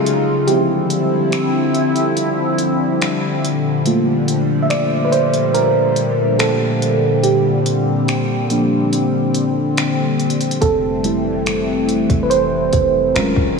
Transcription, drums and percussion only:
0.06 closed hi-hat
0.48 closed hi-hat
0.90 closed hi-hat
1.32 finger snap, closed hi-hat
1.75 closed hi-hat
1.96 closed hi-hat
2.17 closed hi-hat
2.58 closed hi-hat
3.02 finger snap, closed hi-hat
3.45 closed hi-hat
3.86 closed hi-hat
4.28 closed hi-hat
4.70 finger snap, closed hi-hat
5.12 closed hi-hat
5.34 closed hi-hat
5.55 closed hi-hat
5.96 closed hi-hat
6.39 finger snap, closed hi-hat
6.82 closed hi-hat
7.24 closed hi-hat
7.66 closed hi-hat
8.08 finger snap, closed hi-hat
8.50 closed hi-hat
8.93 closed hi-hat
9.34 closed hi-hat
9.77 finger snap, closed hi-hat
10.20 closed hi-hat
10.30 closed hi-hat
10.41 closed hi-hat
10.51 closed hi-hat
10.62 kick, closed hi-hat
11.04 closed hi-hat
11.46 finger snap, closed hi-hat
11.89 closed hi-hat
12.10 kick, closed hi-hat
12.31 closed hi-hat
12.73 kick, closed hi-hat
13.16 finger snap, closed hi-hat
13.36 kick

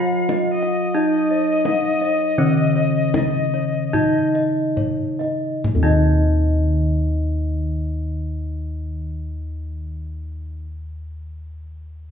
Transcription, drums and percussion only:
0.29 kendang high
0.63 kendang slap
1.31 kendang slap
1.65 kendang high
2.01 kendang slap
2.76 kendang slap
3.14 kendang high, kendang low
3.54 kendang slap
3.94 kendang low
4.35 kendang slap
4.77 kendang low
5.21 kendang slap
5.64 kendang low

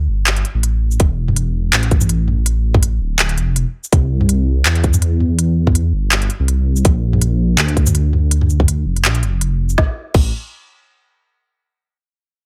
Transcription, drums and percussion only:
0.27 clap, closed hi-hat
0.36 closed hi-hat
0.45 closed hi-hat
0.63 closed hi-hat
0.91 shaker
1.00 kick, closed hi-hat
1.28 mid tom
1.36 closed hi-hat
1.73 clap, closed hi-hat
1.83 closed hi-hat
1.91 kick, closed hi-hat
2.01 mid tom, shaker
2.09 closed hi-hat
2.28 mid tom
2.46 closed hi-hat
2.74 kick, mid tom
2.83 closed hi-hat
3.19 clap, closed hi-hat
3.29 closed hi-hat
3.38 closed hi-hat
3.56 closed hi-hat
3.84 shaker
3.93 kick, closed hi-hat
4.21 mid tom
4.29 closed hi-hat
4.65 clap, closed hi-hat
4.75 closed hi-hat
4.84 kick, closed hi-hat
4.94 mid tom, shaker
5.02 closed hi-hat
5.20 mid tom
5.39 closed hi-hat
5.67 kick, mid tom
5.75 closed hi-hat
6.12 clap, closed hi-hat
6.22 closed hi-hat
6.30 closed hi-hat
6.48 closed hi-hat
6.76 shaker
6.85 kick, closed hi-hat
7.13 mid tom
7.21 closed hi-hat
7.58 clap, closed hi-hat
7.68 closed hi-hat
7.77 kick, closed hi-hat
7.87 mid tom, shaker
7.95 closed hi-hat
8.13 mid tom
8.31 closed hi-hat
8.41 mid tom
8.50 shaker
8.60 kick, mid tom
8.68 closed hi-hat
8.96 closed hi-hat
9.05 clap, closed hi-hat
9.15 closed hi-hat
9.23 closed hi-hat
9.41 closed hi-hat
9.70 shaker
9.78 kick, snare
10.14 kick, crash

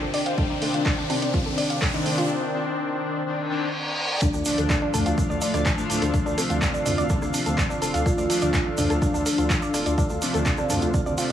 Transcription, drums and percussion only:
0.14 open hi-hat
0.26 closed hi-hat
0.38 kick, closed hi-hat
0.62 open hi-hat
0.74 closed hi-hat
0.86 kick, clap, closed hi-hat
1.10 mid tom, open hi-hat
1.22 closed hi-hat
1.34 kick, closed hi-hat
1.58 open hi-hat
1.70 closed hi-hat
1.82 kick, clap, open hi-hat
2.06 open hi-hat
2.18 closed hi-hat
4.22 kick, closed hi-hat, shaker
4.33 shaker
4.45 open hi-hat, shaker
4.58 closed hi-hat, shaker
4.70 kick, cross-stick, clap, closed hi-hat, shaker
4.94 mid tom, open hi-hat, shaker
5.06 closed hi-hat, shaker
5.18 kick, closed hi-hat, shaker
5.31 shaker
5.41 open hi-hat, shaker
5.54 cross-stick, closed hi-hat, shaker
5.66 kick, clap, closed hi-hat, shaker
5.78 shaker
5.90 open hi-hat, shaker
6.02 closed hi-hat, shaker
6.14 kick, closed hi-hat, shaker
6.27 shaker
6.38 cross-stick, open hi-hat, shaker
6.50 closed hi-hat, shaker
6.62 kick, clap, closed hi-hat, shaker
6.74 shaker
6.86 mid tom, open hi-hat, shaker
6.98 closed hi-hat, shaker
7.09 kick, closed hi-hat, shaker
7.22 cross-stick, shaker
7.34 open hi-hat, shaker
7.46 closed hi-hat, shaker
7.58 kick, clap, closed hi-hat, shaker
7.70 shaker
7.82 open hi-hat, shaker
7.94 closed hi-hat, shaker
8.06 kick, cross-stick, closed hi-hat, shaker
8.18 shaker
8.30 open hi-hat, shaker
8.41 closed hi-hat, shaker
8.54 kick, clap, closed hi-hat, shaker
8.78 mid tom, open hi-hat, shaker
8.90 cross-stick, closed hi-hat, shaker
9.02 kick, closed hi-hat, shaker
9.14 shaker
9.26 open hi-hat, shaker
9.38 closed hi-hat, shaker
9.50 kick, clap, closed hi-hat, shaker
9.62 shaker
9.74 cross-stick, open hi-hat, shaker
9.86 closed hi-hat, shaker
9.98 kick, closed hi-hat, shaker
10.09 shaker
10.22 open hi-hat, shaker
10.34 closed hi-hat, shaker
10.46 kick, clap, closed hi-hat, shaker
10.57 cross-stick, shaker
10.70 mid tom, open hi-hat, shaker
10.81 closed hi-hat, shaker
10.94 kick, closed hi-hat, shaker
11.06 shaker
11.18 open hi-hat, shaker

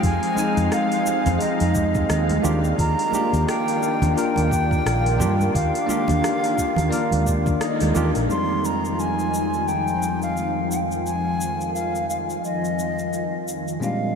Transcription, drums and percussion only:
0.03 kick, open hi-hat, shaker
0.23 open hi-hat
0.37 high conga, shaker
0.57 open hi-hat, muted conga, shaker
0.72 cross-stick, open hi-hat, shaker
0.92 open hi-hat, shaker
1.07 muted conga, shaker
1.26 open hi-hat, low conga, shaker
1.41 open hi-hat, shaker
1.60 open hi-hat, high conga, shaker
1.75 kick, high conga, shaker
1.95 kick, muted conga, shaker
2.10 cross-stick, open hi-hat, shaker
2.29 open hi-hat, high conga
2.45 low conga, shaker
2.65 shaker
2.79 kick, open hi-hat, shaker
2.99 open hi-hat
3.13 high conga, shaker
3.34 open hi-hat, shaker
3.49 cross-stick, open hi-hat, shaker
3.68 open hi-hat, shaker
3.83 shaker
4.02 open hi-hat, low conga, shaker
4.18 open hi-hat, shaker
4.36 open hi-hat, muted conga, shaker
4.51 kick, shaker
4.71 kick, shaker
4.87 cross-stick, open hi-hat, shaker
5.06 open hi-hat
5.20 low conga, shaker
5.40 muted conga, high conga, shaker
5.55 kick, open hi-hat, shaker
5.75 open hi-hat, shaker
5.89 high conga, shaker
6.08 open hi-hat, muted conga, low conga, shaker
6.24 cross-stick, open hi-hat, shaker
6.44 open hi-hat, shaker
6.57 kick, muted conga, shaker
6.76 open hi-hat, low conga, shaker
6.92 open hi-hat, shaker
7.11 open hi-hat, high conga, shaker
7.26 kick, high conga, shaker
7.46 kick, muted conga, shaker
7.61 cross-stick, open hi-hat, shaker
7.80 open hi-hat, high conga, shaker
7.95 low conga, shaker
8.15 open hi-hat, shaker
8.31 shaker
8.65 shaker
8.85 shaker
9.00 shaker
9.19 shaker
9.34 shaker
9.54 shaker
9.68 shaker
9.88 shaker
10.03 shaker
10.22 shaker
10.37 shaker
10.72 shaker
10.92 shaker
11.07 shaker
11.41 shaker
11.61 shaker
11.76 shaker
11.96 shaker
12.10 shaker
12.30 shaker
12.45 shaker
12.65 shaker
12.79 shaker
12.99 shaker
13.13 shaker
13.48 shaker
13.68 shaker
13.83 shaker

